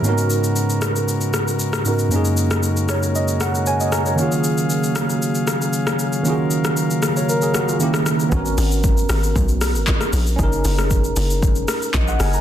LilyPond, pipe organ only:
<<
  \new Staff \with { instrumentName = "Pipe organ" } { \time 4/4 \key aes \dorian \tempo 4 = 116 << { bes'1~ | bes'1 | aes'1 | bes'1 |
r1 | r1 | } \\ { <aes ges'>1~ | <aes ges'>1 | <ges f''>1~ | <ges f''>2. <g fes'>4 |
r1 | r1 | } >> }
  \new Staff \with { instrumentName = "Pipe organ" } { \clef bass \time 4/4 \key aes \dorian <des ces'>1 | <des des'>1~ | <des des'>1~ | <des des'>1 |
r1 | r1 | }
>>